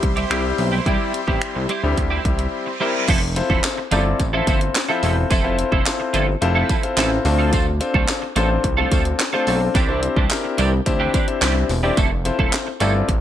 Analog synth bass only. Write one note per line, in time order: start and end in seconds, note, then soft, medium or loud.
0.03 0.25 C2 medium
0.31 0.53 C2 medium
0.58 0.81 B1 medium
0.86 0.97 C2 loud
1.28 1.39 A1 loud
1.56 1.67 C2 medium
1.84 1.95 D2 medium
1.97 2.19 D2 loud
2.25 2.47 C2 loud
3.08 3.42 F1 loud
3.50 3.61 E1 loud
3.92 4.14 G1 medium
4.20 4.42 A1 loud
4.47 4.69 G1 loud
5.03 5.25 E1 medium
5.31 5.64 F1 loud
5.72 5.83 F1 medium
6.14 6.36 G1 medium
6.42 6.64 F1 loud
6.97 7.19 A1 loud
7.25 7.80 D2 loud
7.94 8.05 C2 medium
8.36 8.58 A1 medium
8.64 8.86 C2 loud
8.92 9.14 D2 medium
9.47 9.69 B1 medium
9.75 10.08 C2 loud
10.16 10.28 C2 medium
10.59 10.81 C2 medium
10.86 11.08 D2 medium
11.42 11.64 C2 medium
11.70 11.92 E1 loud
11.97 12.30 F1 loud
12.39 12.50 E1 medium
12.81 13.03 G1 medium
13.08 13.21 A1 loud